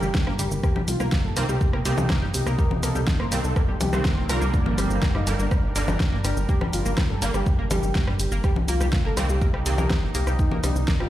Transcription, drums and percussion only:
0.03 shaker soft
0.15 kick loud
0.15 snare loud
0.15 shaker soft
0.27 cross-stick medium
0.39 open hi-hat loud
0.39 shaker medium
0.51 shaker soft
0.63 kick loud
0.63 cross-stick medium
0.63 shaker soft
0.76 low conga medium
0.88 open hi-hat loud
0.88 shaker medium
1.00 cross-stick medium
1.00 shaker soft
1.12 kick loud
1.12 snare loud
1.12 shaker soft
1.37 cross-stick medium
1.37 open hi-hat loud
1.37 shaker medium
1.49 shaker soft
1.61 kick loud
1.61 shaker soft
1.73 cross-stick medium
1.85 open hi-hat loud
1.85 shaker medium
1.98 low conga medium
1.98 shaker soft
2.10 kick loud
2.10 cross-stick medium
2.10 snare loud
2.10 shaker soft
2.34 open hi-hat loud
2.34 shaker medium
2.47 cross-stick medium
2.47 shaker soft
2.59 kick loud
2.59 shaker soft
2.71 low conga medium
2.83 cross-stick medium
2.83 open hi-hat loud
2.83 shaker medium
2.95 shaker soft
3.07 kick loud
3.07 snare loud
3.07 shaker soft
3.20 cross-stick medium
3.32 open hi-hat loud
3.32 shaker medium
3.44 shaker soft
3.56 kick loud
3.56 cross-stick medium
3.56 shaker soft
3.81 open hi-hat loud
3.81 low conga medium
3.81 shaker medium
3.93 cross-stick medium
3.93 shaker soft
4.05 kick loud
4.05 snare loud
4.05 shaker soft
4.29 cross-stick medium
4.29 open hi-hat loud
4.29 shaker medium
4.42 shaker soft
4.54 kick loud
4.54 shaker soft
4.66 low conga medium
4.78 cross-stick medium
4.78 open hi-hat loud
4.78 shaker medium
4.90 shaker soft
5.03 kick loud
5.03 snare loud
5.03 shaker soft
5.15 cross-stick medium
5.27 open hi-hat loud
5.27 shaker medium
5.39 shaker soft
5.51 kick loud
5.51 cross-stick medium
5.51 shaker soft
5.76 open hi-hat loud
5.76 shaker medium
5.88 cross-stick medium
5.88 low conga loud
5.88 shaker soft
6.00 kick loud
6.00 snare loud
6.00 shaker soft
6.25 cross-stick medium
6.25 open hi-hat loud
6.25 shaker medium
6.37 shaker soft
6.49 kick loud
6.49 shaker soft
6.61 cross-stick medium
6.61 low conga medium
6.73 open hi-hat loud
6.73 shaker medium
6.86 shaker soft
6.98 kick loud
6.98 cross-stick medium
6.98 snare loud
6.98 shaker soft
7.22 open hi-hat loud
7.22 shaker medium
7.34 cross-stick medium
7.34 shaker soft
7.46 kick loud
7.46 shaker soft
7.71 cross-stick medium
7.71 open hi-hat loud
7.71 low conga medium
7.71 shaker medium
7.83 shaker soft
7.95 kick loud
7.95 snare loud
7.95 shaker soft
8.07 cross-stick medium
8.20 open hi-hat loud
8.20 shaker medium
8.32 shaker soft
8.44 kick loud
8.44 cross-stick medium
8.44 shaker soft
8.56 low conga medium
8.68 open hi-hat medium
8.68 shaker medium
8.81 cross-stick soft
8.81 shaker soft
8.93 kick loud
8.93 snare loud
8.93 shaker soft
9.17 cross-stick medium
9.17 open hi-hat loud
9.17 shaker medium
9.29 shaker soft
9.42 kick loud
9.42 shaker soft
9.54 cross-stick soft
9.66 open hi-hat loud
9.66 shaker medium
9.78 low conga medium
9.78 shaker soft
9.90 kick loud
9.90 cross-stick medium
9.90 snare loud
9.90 shaker soft
10.15 open hi-hat loud
10.15 shaker medium
10.27 cross-stick medium
10.27 shaker soft
10.39 kick loud
10.39 shaker soft
10.51 low conga medium
10.64 cross-stick soft
10.64 open hi-hat loud
10.64 shaker medium
10.76 shaker soft
10.88 kick loud
10.88 snare loud
10.88 shaker soft
11.00 cross-stick medium

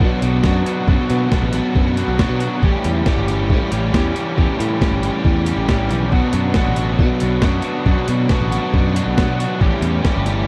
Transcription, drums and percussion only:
0.00 kick loud
0.22 closed hi-hat medium
0.43 kick loud
0.43 snare loud
0.66 closed hi-hat medium
0.88 kick loud
1.10 closed hi-hat medium
1.32 kick loud
1.32 snare loud
1.53 closed hi-hat medium
1.75 kick loud
1.97 closed hi-hat medium
2.19 kick loud
2.19 snare loud
2.40 closed hi-hat medium
2.63 kick loud
2.84 closed hi-hat medium
3.06 kick loud
3.06 snare loud
3.28 closed hi-hat medium
3.50 kick medium
3.72 closed hi-hat medium
3.94 kick loud
3.94 snare loud
4.16 closed hi-hat medium
4.38 kick loud
4.60 closed hi-hat medium
4.81 kick medium
4.81 snare medium
5.03 closed hi-hat medium
5.25 kick loud
5.46 closed hi-hat medium
5.69 kick loud
5.69 snare loud
5.91 closed hi-hat medium
6.12 kick loud
6.33 closed hi-hat medium
6.54 kick loud
6.54 snare loud
6.76 closed hi-hat medium
6.99 kick loud
7.20 closed hi-hat medium
7.42 kick loud
7.42 snare loud
7.62 closed hi-hat medium
7.86 kick loud
8.08 closed hi-hat medium
8.29 kick loud
8.29 snare loud
8.52 closed hi-hat medium
8.74 kick loud
8.96 closed hi-hat medium
9.18 kick loud
9.18 snare loud
9.40 closed hi-hat medium
9.61 kick loud
9.82 closed hi-hat medium
10.05 kick loud
10.05 snare loud
10.26 closed hi-hat medium

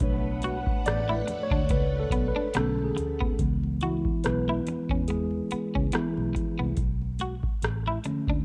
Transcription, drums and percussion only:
0.00 kick loud
0.00 closed hi-hat medium
0.00 low conga medium
0.42 closed hi-hat medium
0.42 high conga medium
0.66 kick loud
0.86 cross-stick loud
0.86 closed hi-hat medium
1.10 high conga medium
1.28 closed hi-hat medium
1.28 low conga medium
1.51 kick medium
1.51 high conga medium
1.69 kick loud
1.69 closed hi-hat medium
1.69 muted conga soft
2.10 kick loud
2.10 closed hi-hat medium
2.35 high conga soft
2.54 cross-stick loud
2.54 closed hi-hat medium
2.54 muted conga soft
2.78 muted conga soft
2.78 high conga medium
2.96 closed hi-hat medium
2.96 low conga medium
3.21 kick medium
3.21 high conga medium
3.39 kick loud
3.39 closed hi-hat medium
3.39 muted conga soft
3.63 muted conga soft
3.81 closed hi-hat medium
3.81 high conga medium
4.05 kick medium
4.24 cross-stick loud
4.24 closed hi-hat medium
4.48 muted conga soft
4.48 high conga medium
4.67 closed hi-hat medium
4.67 low conga medium
4.89 kick medium
4.89 high conga medium
5.08 closed hi-hat medium
5.31 muted conga soft
5.51 closed hi-hat medium
5.74 kick medium
5.74 high conga soft
5.92 cross-stick loud
5.92 closed hi-hat medium
6.17 muted conga soft
6.17 high conga medium
6.35 kick medium
6.35 closed hi-hat medium
6.35 low conga medium
6.59 high conga medium
6.77 kick loud
6.77 closed hi-hat medium
7.02 muted conga soft
7.19 closed hi-hat medium
7.19 high conga medium
7.43 kick medium
7.62 cross-stick loud
7.62 closed hi-hat medium
7.62 muted conga soft
7.87 muted conga soft
7.87 high conga medium
8.04 closed hi-hat medium
8.04 low conga medium
8.27 kick medium
8.27 high conga medium

